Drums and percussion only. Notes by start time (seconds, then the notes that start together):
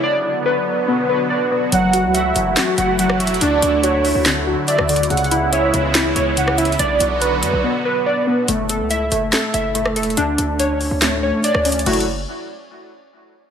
1.72 closed hi-hat
1.93 closed hi-hat
2.15 closed hi-hat
2.36 closed hi-hat
2.57 snare, clap, closed hi-hat
2.78 closed hi-hat
2.99 closed hi-hat
3.10 cross-stick
3.20 closed hi-hat
3.27 closed hi-hat
3.34 closed hi-hat
3.41 closed hi-hat
3.62 closed hi-hat
3.83 closed hi-hat
4.05 open hi-hat
4.26 snare, clap, closed hi-hat
4.68 closed hi-hat
4.79 cross-stick
4.89 closed hi-hat, open hi-hat
4.96 closed hi-hat
5.03 closed hi-hat
5.10 closed hi-hat
5.17 closed hi-hat
5.24 closed hi-hat
5.31 closed hi-hat
5.53 closed hi-hat
5.74 closed hi-hat
5.95 snare, clap, closed hi-hat
6.16 closed hi-hat
6.37 closed hi-hat
6.48 cross-stick
6.58 closed hi-hat
6.65 closed hi-hat
6.72 closed hi-hat
6.79 closed hi-hat
7.00 closed hi-hat
7.22 closed hi-hat
7.43 closed hi-hat
8.48 closed hi-hat
8.69 closed hi-hat
8.91 closed hi-hat
9.12 closed hi-hat
9.33 snare, clap, closed hi-hat
9.54 closed hi-hat
9.75 closed hi-hat
9.86 cross-stick
9.96 closed hi-hat
10.03 closed hi-hat
10.10 closed hi-hat
10.17 closed hi-hat
10.38 closed hi-hat
10.59 closed hi-hat
10.81 open hi-hat
11.02 snare, clap, closed hi-hat
11.44 closed hi-hat
11.55 cross-stick
11.65 closed hi-hat, open hi-hat
11.72 closed hi-hat
11.79 closed hi-hat
11.86 closed hi-hat, crash
11.93 closed hi-hat
12.00 closed hi-hat